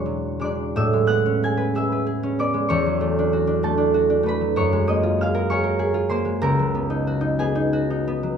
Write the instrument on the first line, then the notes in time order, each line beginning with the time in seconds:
harp
Already playing: E2 B2 G#3 B3 D4 E4 C#5 E5 F#5 G#5 C#6
0.06 F#3
0.39 F#3 G#3 D4 D6
0.45 D5
0.76 A2 E5 E6
0.93 G#3
1.07 B3 F#5 F#6
1.26 C#4
1.43 G#4 G#5 G#6
1.57 B4
1.75 G#4 E5 E6
1.92 B4
2.06 G#4
2.23 C#4
2.39 B3 D5 D6
2.54 G#3
2.69 E2 C#5 C#6
2.86 F#3
3.01 A3
3.19 D4
3.33 F#4
3.47 D4
3.63 A3 A4 A5
3.77 D4
3.94 F#4
4.10 D4
4.23 A3 B4
4.28 B5
4.41 F#3
4.56 F#2 C#5 C#6
4.72 G#3
4.87 A#3 D#5 D#6
5.03 F4
5.21 G#4 F5 F6
5.34 A#4
5.50 G#4 C#5 C#6
5.64 A#4
5.79 G#4
5.94 F4
6.09 A#3 C5 C6
6.25 G#3
6.42 C#2 A#4 A#5
6.59 F#3
6.75 B3
6.90 D#4
7.07 F#4
7.21 D#4
7.39 B3 G#4 G#5
7.55 D#4
7.73 F#4
7.90 D#4
8.07 B3
8.23 F#3